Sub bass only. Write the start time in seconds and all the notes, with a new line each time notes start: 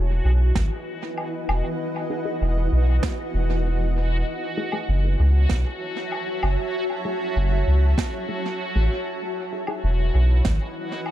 Already playing: E1
0.25 B1
0.56 G#1
1.48 E1
2.41 E1
2.72 B1
3.34 E1
4.88 F#1
5.19 C#2
5.50 B1
6.43 F#1
7.36 F#1
7.67 C#2
8.75 A1
9.84 E1
10.14 B1
10.46 G#1